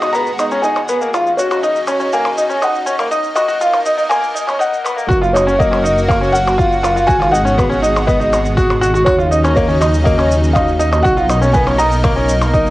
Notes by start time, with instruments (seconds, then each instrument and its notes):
Already playing: detuned saw bass G#1, analog synth pad B2 G#3 F#4, felt piano D#5
0.02 grand piano D#4, percussion blips, shaker
0.13 grand piano B3, felt piano A#5, shaker
0.27 shaker
0.39 grand piano D#4, percussion blips, shaker
0.51 grand piano C#4, shaker
0.62 grand piano D#4, felt piano G#5, shaker
0.76 percussion blips, shaker
0.88 grand piano B3, shaker
1.01 grand piano A#3, shaker
1.13 detuned saw bass D#2, analog synth pad C#3 F#3 D#4, grand piano F4, percussion blips, shaker
1.27 shaker
1.37 grand piano F#4, felt piano C#5, shaker
1.51 grand piano F#4, percussion blips, shaker
1.63 grand piano D#4, shaker
1.76 shaker
1.87 grand piano C#4, percussion blips, shaker
2.00 grand piano C#4, shaker
2.13 grand piano A#3, felt piano G#5, shaker
2.25 percussion blips, shaker
2.38 grand piano D#4, shaker
2.49 grand piano C#4, shaker
2.62 grand piano D#4, felt piano F#5, percussion blips, shaker
2.75 shaker
2.86 grand piano C#4, shaker
2.99 grand piano A#3, percussion blips, shaker
3.11 detuned saw bass B1, analog synth pad B2 A#3, grand piano D#4, shaker
3.24 shaker
3.35 grand piano F#4, felt piano D#5, percussion blips, shaker
3.48 grand piano F#4, shaker
3.61 grand piano F4, shaker
3.74 percussion blips, shaker
3.86 grand piano D#4, shaker
3.98 grand piano D#4, shaker
4.09 grand piano A#3, felt piano G#5, percussion blips, shaker
4.24 shaker
4.34 grand piano D#4, shaker
4.47 grand piano C#4, percussion blips, shaker
4.59 grand piano D#4, felt piano F#5, shaker
4.74 shaker
4.84 grand piano B3, percussion blips, shaker
4.96 grand piano A#3, shaker
5.09 detuned saw bass F#1, analog synth pad F#3 A#3 F#4, grand piano F#4, kick, shaker
5.22 grand piano F4, shaker
5.33 grand piano D#4, felt piano C#5, percussion blips, shaker
5.47 grand piano C#4, shaker
5.59 grand piano A#3, felt piano D#5, kick, shaker
5.71 grand piano C#4, percussion blips, shaker
5.84 grand piano D#4, shaker
5.98 shaker
6.08 grand piano A#3, felt piano F5, kick, percussion blips, shaker
6.21 grand piano C#4, shaker
6.32 felt piano F#5, shaker
6.48 percussion blips, shaker
6.58 grand piano F4, kick, shaker
6.72 shaker
6.83 grand piano F4, percussion blips, shaker
6.96 grand piano F4, shaker
7.07 detuned saw bass G#1, analog synth pad B2 G#3, grand piano F#4, felt piano G#5, kick, shaker
7.20 grand piano F4, percussion blips, shaker
7.31 grand piano D#4, felt piano F#5, shaker
7.45 grand piano C#4, shaker
7.58 grand piano B3, kick, percussion blips, shaker
7.70 grand piano C#4, shaker
7.82 grand piano D#4, shaker
7.96 percussion blips, shaker
8.07 grand piano B3, felt piano D#5, kick, shaker
8.20 grand piano D#4, shaker
8.33 percussion blips, shaker
8.45 shaker
8.57 grand piano F#4, kick, shaker
8.70 percussion blips, shaker
8.81 grand piano F#4, shaker
8.94 grand piano F#4, shaker
9.05 detuned saw bass D#2, analog synth pad C#3 F#3 D#4, grand piano F#4, felt piano C#5, kick, percussion blips, shaker
9.18 grand piano F4, shaker
9.31 grand piano D#4, shaker
9.44 grand piano C#4, percussion blips, shaker
9.56 grand piano A#3, felt piano C#5, kick, shaker
9.68 grand piano C#4, shaker
9.81 grand piano D#4, percussion blips, shaker
9.94 shaker
10.04 grand piano A#3, felt piano D#5, kick, shaker
10.18 grand piano C#4, percussion blips, shaker
10.31 shaker
10.44 shaker
10.53 grand piano D#4, felt piano F5, kick, percussion blips, shaker
10.68 shaker
10.79 grand piano D#4, shaker
10.92 grand piano D#4, percussion blips, shaker
11.03 detuned saw bass B1, analog synth pad B2 A#3 D#4, grand piano F#4, felt piano F#5, kick, shaker
11.17 grand piano F4, shaker
11.29 grand piano D#4, percussion blips, shaker
11.42 grand piano C#4, shaker
11.53 grand piano B3, felt piano G#5, kick, shaker
11.67 grand piano C#4, percussion blips, shaker
11.78 grand piano D#4, felt piano A#5, shaker
11.92 shaker
12.04 grand piano A#3, kick, percussion blips, shaker
12.16 grand piano C#4, shaker
12.29 shaker
12.41 percussion blips, shaker
12.54 grand piano D#4, kick, shaker
12.66 shaker